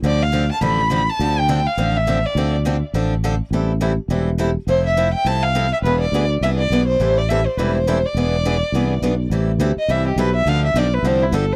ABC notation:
X:1
M:4/4
L:1/8
Q:"Swing" 1/4=207
K:Am
V:1 name="Violin"
d f2 a b3 a- | a g2 f2 e2 d- | d z6 z | z8 |
c e2 g a f2 e | B d2 z e d2 c- | c d e c B c2 d- | d6 z2 |
z3 ^d e G B e | f e d B c E A c |]
V:2 name="Steel-string acoustic guitar"
[D,F,CDA] z [D,F,CDA] z [D,F,CDA] z [D,F,CDA] z | [D,F,CDA] z [D,F,CDA] z [D,F,CDA] z [D,F,CDA] z | [D,F,CDA] z [D,F,CDA] z [D,F,CDA] z [D,F,CDA] z | [E,G,CEA] z [E,G,CEA] z [E,G,CEA] z [E,G,CEA] z |
[F,CEA] z [F,CEA] z [F,CEA] z [F,CEA] z | [E,B,D^G] z [E,B,DG] z [E,B,DG] z [E,B,DG] z | [E,G,CEA] z [E,G,CEA] z [E,G,CEA] z [E,G,CEA] z | [E,B,D^G] z [E,B,DG] z [E,B,DG] z [E,B,DG] z |
[E,G,CEA] z [E,G,CEA] z [E,G,CEA] z [E,G,CEA] z | [D,F,CDA] z [D,F,CDA] z [D,F,CDA] z [D,F,CDA] z |]
V:3 name="Fretless electric bass" clef=bass
D,,4 A,,,4 | D,,4 A,,,4 | D,,4 A,,,4 | A,,,4 E,,,4 |
F,,,4 C,,4 | E,,,2 D,,2 C,,2 B,,,2 | A,,,4 E,,,4 | E,,,4 C,,2 B,,,2 |
A,,,2 D,, z C,,2 B,,,2 | D,,2 B,,,2 C,,2 G,,,2 |]